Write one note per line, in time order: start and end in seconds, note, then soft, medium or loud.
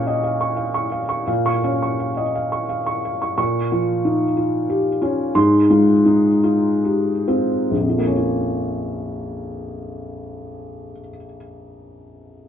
0.00 1.23 A#2 medium
0.00 1.30 C#4 soft
0.00 0.24 F5 medium
0.00 0.41 C#6 medium
0.07 0.23 D#5 soft
0.24 0.50 F5 soft
0.41 0.67 C#6 soft
0.57 0.84 F5 soft
0.74 1.02 C#6 soft
0.92 1.20 F5 soft
1.09 1.27 C#6 soft
1.27 3.34 A#2 medium
1.27 1.56 F5 soft
1.46 1.74 C#6 medium
1.64 2.21 C#4 soft
1.64 1.92 F5 soft
1.82 2.10 C#6 soft
2.00 2.28 F5 soft
2.17 2.35 D#5 soft
2.35 2.63 F5 soft
2.52 2.80 C#6 soft
2.69 2.97 F5 soft
2.86 3.15 C#6 soft
3.05 3.32 F5 soft
3.22 3.36 C#6 soft
3.38 5.30 A#2 medium
3.38 3.91 C#6 medium
3.72 4.24 F3 soft
3.72 4.24 F4 soft
4.05 4.37 D#4 soft
4.37 4.89 F4 soft
4.70 5.02 G4 soft
5.02 5.35 C#4 soft
5.02 5.35 F4 soft
5.35 7.67 G#2 medium
5.35 5.91 C6 medium
5.70 6.28 G#3 soft
5.70 6.28 F4 medium
6.06 6.43 D#4 soft
6.43 7.10 F4 soft
6.85 7.28 G4 soft
7.28 7.71 C4 soft
7.28 7.71 F4 soft
7.71 10.90 A#1 soft
7.80 10.99 F2 soft
7.89 11.08 F3 soft
7.98 11.17 A#3 soft
8.07 11.25 C#4 soft
8.16 11.35 F4 soft